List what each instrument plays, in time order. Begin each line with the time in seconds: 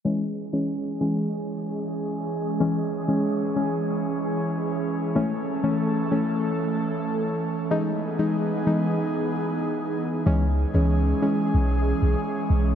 0.05 synth stab E3 G#3 C#4, analog synth pad E3 G#3 C#4 G#4
0.53 synth stab E3 G#3 C#4
1.00 synth stab E3 G#3 C#4
2.60 synth stab E3 G#3 C#4
3.08 synth stab E3 G#3 C#4
3.56 synth stab E3 G#3 C#4
5.15 synth stab E3 A3 C#4, analog synth pad A3 A4
5.63 synth stab E3 A3 C#4
6.11 synth stab E3 A3 C#4
7.70 synth stab E3 G#3 D#4, analog synth pad B3 D#4 G#4
8.19 synth stab E3 G#3 D#4
8.66 synth stab E3 G#3 D#4
10.26 808-style bass C#2, synth stab E3 G#3 C#4, analog synth pad E3 G#3 C#4 G#4
10.74 808-style bass C#2, synth stab E3 G#3 C#4
11.22 synth stab E3 G#3 C#4
11.54 808-style bass B1
12.02 808-style bass B1
12.50 808-style bass B1